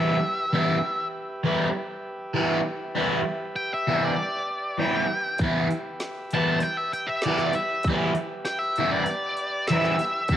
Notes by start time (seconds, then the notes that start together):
Already playing: E3 G3 B3 E4 G4 B4 E5
0.49 G4 B4 E5
0.53 E3 G3 B3 E4
1.44 E3 G3 B3 E4
2.34 E3 G3 B3 E4
2.95 E3 G3 B3 E4
3.56 G5
3.74 E5
3.87 E3 G3 B3 E4
4.05 D5
4.78 E3 G3 B3 E4 G5
5.37 G4 B4 E5, kick, open hi-hat
5.41 E3 G3 B3 E4
5.71 open hi-hat
6.00 snare, open hi-hat
6.31 E3 G3 B3 A5, open hi-hat
6.35 E4
6.60 G5, open hi-hat
6.77 E5
6.93 G5, open hi-hat
7.07 E5
7.22 E3 D5, snare, open hi-hat
7.27 G3 B3 E4
7.38 snare
7.53 E5, open hi-hat
7.83 kick, open hi-hat
7.88 E3 G3 B3 E4
8.15 open hi-hat
8.45 G5, snare, open hi-hat
8.59 E5
8.76 E3 G3, open hi-hat
8.80 B3 E4
8.91 D5
9.06 open hi-hat
9.37 open hi-hat
9.67 E3 E5, snare, open hi-hat
9.71 G3 B3 E4
9.84 snare
9.99 open hi-hat
10.28 E3 G4 B4 E5, kick, open hi-hat
10.33 G3 B3